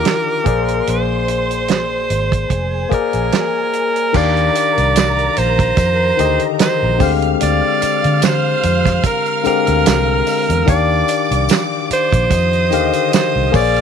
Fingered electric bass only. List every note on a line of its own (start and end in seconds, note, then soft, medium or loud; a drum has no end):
0.46 0.80 A#1 medium
0.88 2.06 A#1 medium
2.10 2.44 G#1 medium
2.51 2.85 F1 medium
3.14 3.29 A#1 medium
4.15 4.49 D#2 loud
4.78 5.27 C2 medium
5.38 5.71 A#1 medium
5.77 6.11 F2 loud
6.19 6.37 D2 medium
6.83 6.98 A#1 loud
7.00 7.34 D2 loud
7.42 7.60 D2 loud
7.83 muted fingered electric bass stroke soft
8.05 8.54 D3 medium
8.64 8.98 F2 loud
9.46 muted fingered electric bass stroke soft
9.68 9.83 D2 medium
9.86 10.20 C2 medium
10.49 10.65 E2 medium
10.68 11.02 D#2 loud
11.31 11.47 C2 medium
11.91 muted fingered electric bass stroke medium
12.13 12.28 A#1 medium
12.31 12.72 F2 loud
12.72 12.90 D#2 medium
13.36 13.51 C2 medium
13.54 13.81 A#1 medium